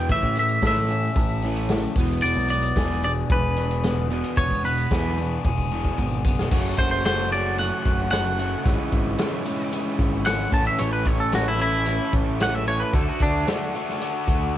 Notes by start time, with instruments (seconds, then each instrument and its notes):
Already playing: overdriven electric guitar B3 D4
0.09 picked electric bass A1, overdriven electric guitar A2 E3 A3, clean electric guitar E5, kick, closed hi-hat
0.23 picked electric bass A1, kick
0.35 overdriven electric guitar A2 E3 A3, clean electric guitar E5, closed hi-hat
0.49 closed hi-hat
0.62 picked electric bass A2, overdriven electric guitar A2 E3 A3 A4, kick, snare, closed hi-hat
0.67 clean electric guitar E5
0.88 overdriven electric guitar A2 E3 C#4, closed hi-hat
1.16 picked electric bass A1, overdriven electric guitar A2 E3 A4, kick, closed hi-hat
1.42 overdriven electric guitar A2 E3 A3 C#4, closed hi-hat
1.56 closed hi-hat
1.69 overdriven electric guitar A2 E3 A3, snare, closed hi-hat
1.96 picked electric bass E1, overdriven electric guitar E2 B2 E3 B3, kick, closed hi-hat
2.22 picked electric bass E1, overdriven electric guitar E2 B2 E3 B3, clean electric guitar D5, closed hi-hat
2.37 picked electric bass B1
2.49 overdriven electric guitar E2 B2 B3, clean electric guitar D5, closed hi-hat
2.63 closed hi-hat
2.76 picked electric bass E1, overdriven electric guitar E2 B2 E3 G#4, kick, snare, closed hi-hat
3.03 overdriven electric guitar E2 B2 D4, clean electric guitar D5, closed hi-hat
3.30 picked electric bass E1, overdriven electric guitar E2 B2 G#4, clean electric guitar B4, kick, closed hi-hat
3.57 overdriven electric guitar E2 B2 D4, closed hi-hat
3.71 closed hi-hat
3.83 overdriven electric guitar E2 B2 B3, snare, closed hi-hat
4.10 overdriven electric guitar E2 B2 E3 B3, closed hi-hat
4.24 closed hi-hat
4.37 picked electric bass E1, overdriven electric guitar E2 B2 B3, clean electric guitar C#5, kick, closed hi-hat
4.50 picked electric bass E1, kick
4.64 overdriven electric guitar E2 B2 B3, clean electric guitar B4, closed hi-hat
4.78 closed hi-hat
4.91 picked electric bass E2, overdriven electric guitar E2 B2 E3 G#4, kick, snare, closed hi-hat
5.18 overdriven electric guitar E2 B2 D4, closed hi-hat
5.44 picked electric bass E1, overdriven electric guitar E2 B2 G#4, kick
5.58 kick
5.72 overdriven electric guitar E2 B2 E3 D4
5.84 kick
5.97 picked electric bass G#1, overdriven electric guitar E2 B2 B3, kick
6.25 picked electric bass F#1, overdriven electric guitar E2 B2 B3, kick
6.39 snare
6.51 picked electric bass F#1, overdriven electric guitar F#2 C#3 F#3 A3 C#4 F#4, transistor combo organ A4 F#5 C#6, kick, crash
6.78 picked electric bass F#1, clean electric guitar C5, kick, closed hi-hat
6.91 clean electric guitar C5
7.05 overdriven electric guitar F#2 C#3 F#3 A3 C#4 F#4, clean electric guitar C5, snare, closed hi-hat
7.32 overdriven electric guitar F#2 C#3 F#3 A3 C#4 F#4, clean electric guitar D5, closed hi-hat
7.58 overdriven electric guitar F#2 C#3 F#3 A3 C#4 F#4, clean electric guitar F#5, closed hi-hat
7.85 picked electric bass F#1, kick, closed hi-hat
8.11 overdriven electric guitar F#2 C#3 F#3 A3 C#4 F#4, clean electric guitar F#5, snare, closed hi-hat
8.38 overdriven electric guitar F#2 C#3 F#3 A3 C#4 F#4, closed hi-hat
8.65 picked electric bass G#1, overdriven electric guitar G#2 C#3 E3 G#3 C#4 E4 G#4, transistor combo organ B4 E5, kick, closed hi-hat
8.92 picked electric bass G#1, kick, closed hi-hat
9.18 overdriven electric guitar G#2 C#3 E3 G#3 C#4 E4 G#4, snare, closed hi-hat
9.45 overdriven electric guitar G#2 C#3 E3 G#3 C#4 E4 G#4, closed hi-hat
9.72 overdriven electric guitar G#2 C#3 E3 G#3 C#4 E4 G#4, closed hi-hat
9.99 picked electric bass G#1, kick, closed hi-hat
10.25 overdriven electric guitar G#2 C#3 E3 G#3 C#4 E4 G#4, clean electric guitar F#5, snare, closed hi-hat
10.52 picked electric bass A1, overdriven electric guitar A2 E3 A3 C#4 E4 A4, clean electric guitar A5, transistor combo organ A5, kick, closed hi-hat
10.67 clean electric guitar E5
10.78 picked electric bass A1, overdriven electric guitar A2 E3 A3 C#4 E4 A4, clean electric guitar C#5, closed hi-hat
10.93 clean electric guitar B4
11.06 picked electric bass A1, clean electric guitar C#5, kick, closed hi-hat
11.20 clean electric guitar A4
11.32 overdriven electric guitar A2 E3 A3 C#4 E4 A4, clean electric guitar F#4, snare, closed hi-hat
11.48 clean electric guitar E4
11.59 overdriven electric guitar A2 E3 A3 C#4 E4 A4, clean electric guitar E4, closed hi-hat
11.86 overdriven electric guitar A2 E3 A3 C#4 E4 A4, closed hi-hat
12.13 picked electric bass A1, kick, closed hi-hat
12.40 overdriven electric guitar A2 E3 A3 C#4 E4 A4, clean electric guitar F#5, snare, closed hi-hat
12.55 clean electric guitar E5
12.67 overdriven electric guitar A2 E3 A3 C#4 E4 A4, clean electric guitar C#5, closed hi-hat
12.80 clean electric guitar B4
12.93 picked electric bass D2, overdriven electric guitar D3 A3 D4 F#4 A4, transistor combo organ F#4 E5 D6, clean electric guitar A4, kick, closed hi-hat
13.09 clean electric guitar F#4
13.20 picked electric bass D2, clean electric guitar D4, kick, closed hi-hat
13.47 overdriven electric guitar D3 A3 D4 F#4 A4, snare, closed hi-hat
13.74 overdriven electric guitar D3 A3 D4 F#4 A4, closed hi-hat
13.89 snare
14.01 overdriven electric guitar D3 A3 D4 F#4 A4, closed hi-hat
14.27 picked electric bass D2, kick, closed hi-hat